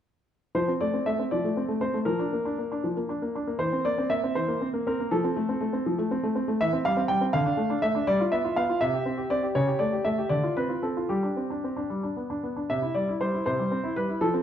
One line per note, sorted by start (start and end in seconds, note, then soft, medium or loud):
0.55 0.68 F3 soft
0.55 0.71 C5 medium
0.68 0.82 C4 soft
0.81 0.95 A3 soft
0.81 1.07 D5 medium
0.94 1.08 C4 soft
1.06 1.20 A3 soft
1.06 1.22 E5 medium
1.19 1.33 C4 soft
1.31 1.44 F3 soft
1.31 1.62 D5 medium
1.44 1.58 A3 soft
1.57 1.70 C4 soft
1.68 1.82 A3 soft
1.81 1.95 C4 soft
1.81 1.97 C5 medium
1.94 2.07 A3 soft
2.05 2.19 F3 soft
2.05 2.82 A#4 medium
2.19 2.33 D4 soft
2.33 2.46 A#3 soft
2.45 2.59 D4 soft
2.58 2.72 A#3 soft
2.72 2.85 D4 soft
2.84 2.96 F3 soft
2.97 3.10 A#3 soft
3.09 3.22 D4 soft
3.22 3.35 A#3 soft
3.35 3.48 D4 soft
3.47 3.60 A#3 soft
3.59 3.71 E3 soft
3.59 3.84 C5 medium
3.73 3.85 C4 soft
3.85 3.98 A#3 soft
3.85 4.10 D5 medium
3.98 4.11 C4 soft
4.10 4.23 A#3 soft
4.10 4.35 E5 medium
4.23 4.36 C4 soft
4.35 4.48 E3 soft
4.35 4.65 C5 medium
4.48 4.61 A#3 soft
4.61 4.74 C4 soft
4.74 4.86 A#3 soft
4.87 4.99 C4 soft
4.87 5.11 A#4 medium
5.00 5.11 A#3 soft
5.11 5.23 F3 medium
5.11 6.31 A4 medium
5.24 5.37 C4 soft
5.36 5.49 A3 soft
5.49 5.61 C4 soft
5.61 5.74 A3 soft
5.73 5.86 C4 soft
5.86 5.98 F3 soft
5.98 6.11 A3 soft
6.11 6.24 C4 soft
6.23 6.36 A3 soft
6.35 6.48 C4 soft
6.48 6.60 A3 soft
6.61 6.72 E3 medium
6.61 6.75 E5 medium
6.73 6.85 C4 soft
6.85 6.97 G3 soft
6.85 6.99 F5 medium
6.97 7.09 C4 soft
7.08 7.21 G3 soft
7.08 7.23 G5 medium
7.21 7.33 C4 soft
7.33 7.45 D3 medium
7.33 7.78 F5 medium
7.46 7.58 D4 soft
7.57 7.70 A3 soft
7.70 7.83 D4 soft
7.82 7.95 A3 soft
7.82 8.07 E5 medium
7.95 8.07 D4 soft
8.07 8.19 G3 medium
8.07 8.22 D5 medium
8.20 8.33 F4 soft
8.32 8.45 B3 soft
8.32 8.54 E5 medium
8.44 8.57 F4 soft
8.56 8.69 B3 soft
8.56 8.81 F5 medium
8.69 8.81 F4 soft
8.81 8.93 C3 medium
8.81 9.26 E5 medium
8.94 9.07 G4 soft
9.06 9.19 C4 soft
9.17 9.31 G4 soft
9.30 9.44 C4 soft
9.30 9.45 D5 medium
9.43 9.55 G4 soft
9.55 9.67 C#3 medium
9.55 9.78 C#5 medium
9.67 9.80 G4 soft
9.79 9.93 A3 soft
9.79 10.05 D5 medium
9.93 10.06 G4 soft
10.05 10.18 A3 soft
10.05 10.31 E5 medium
10.18 10.31 G4 soft
10.29 10.43 D3 soft
10.29 10.53 D5 medium
10.44 10.57 F4 soft
10.57 10.71 C4 soft
10.57 10.83 B4 medium
10.69 10.83 F4 soft
10.83 10.97 C4 soft
10.83 11.10 A4 soft
10.97 11.10 F4 soft
11.09 11.23 G3 soft
11.09 11.86 G4 medium
11.23 11.37 D4 soft
11.37 11.51 C4 soft
11.50 11.64 D4 soft
11.64 11.78 C4 soft
11.77 11.90 D4 soft
11.90 12.03 G3 soft
12.03 12.17 D4 soft
12.17 12.31 B3 soft
12.30 12.44 D4 soft
12.43 12.57 B3 soft
12.56 12.70 D4 soft
12.70 12.83 C3 soft
12.70 12.93 E5 medium
12.82 12.96 E4 soft
12.95 13.09 G3 soft
12.95 13.10 D5 medium
13.09 13.22 E4 soft
13.21 13.34 G3 soft
13.21 13.44 C5 medium
13.34 13.47 E4 soft
13.46 13.58 C3 soft
13.46 13.92 C5 medium
13.59 13.72 G3 soft
13.71 13.84 C4 soft
13.84 13.97 E4 soft
13.96 14.09 G3 soft
13.96 14.21 B4 medium
14.09 14.21 E4 soft
14.21 14.33 F3 medium
14.21 14.43 A4 medium
14.34 14.43 C4 soft